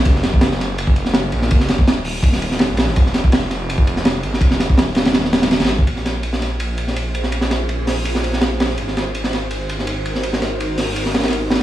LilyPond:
<<
  \new Staff \with { instrumentName = "Ambient pad" } { \time 4/4 \key bes \minor \tempo 4 = 165 r1 | r1 | r1 | r1 |
<des' f' aes' c''>1~ | <des' f' aes' c''>1 | <ees' ges' bes' c''>1~ | <ees' ges' bes' c''>1 | }
  \new Staff \with { instrumentName = "Detuned saw bass" } { \clef bass \time 4/4 \key bes \minor ges,,2.~ ges,,8 bes,,8 | ges,,4 ees,,2~ ees,,16 bes,,8 aes,,16 | f,,2.~ f,,8 aes,,8 | f,,4 ees,,2~ ees,,16 aes,,8 ges,,16 |
bes,,1~ | bes,,1 | aes,,1~ | aes,,1 | }
  \new DrumStaff \with { instrumentName = "Drums" } \drummode { \time 4/4 <bd cymr>16 sn16 <cymr sn>16 bd16 <cymr sn>16 sn16 <cymr sn>8 cymr16 bd16 cymr16 sn16 <cymr sn>8 cymr16 sn16 | <bd cymr>16 sn16 <cymr sn>16 bd16 <cymr sn>8 hho8 <bd cymr>16 sn16 cymr16 sn16 <cymr sn>8 <cymr sn>16 sn16 | <bd cymr>16 sn16 <cymr sn>16 bd16 <cymr sn>16 sn16 <cymr sn>8 cymr16 bd16 cymr16 sn16 <cymr sn>8 cymr16 sn16 | <bd cymr>16 sn16 <cymr sn>16 bd16 <cymr sn>8 <cymr sn>16 <cymr sn>16 <cymr sn>16 sn16 <cymr sn>16 <cymr sn>16 <cymr sn>16 <cymr sn>32 <cymr sn>32 <cymr sn>16 bd16 |
cymr16 sn16 <cymr sn>8 cymr16 sn16 <cymr sn>8 cymr8 cymr16 sn16 cymr8 cymr16 sn16 | cymr16 sn16 <cymr sn>8 cymr8 <hho sn>8 cymr16 sn16 cymr16 sn16 <cymr sn>8 <cymr sn>16 sn16 | cymr16 sn16 <cymr sn>8 cymr16 sn16 <cymr sn>8 cymr8 cymr16 sn16 cymr8 cymr16 sn16 | cymr16 sn16 <cymr sn>8 cymr8 <hho sn>8 cymr16 sn16 <cymr sn>32 <cymr sn>32 <cymr sn>32 <cymr sn>32 cymr8 <cymr sn>32 <cymr sn>16. | }
>>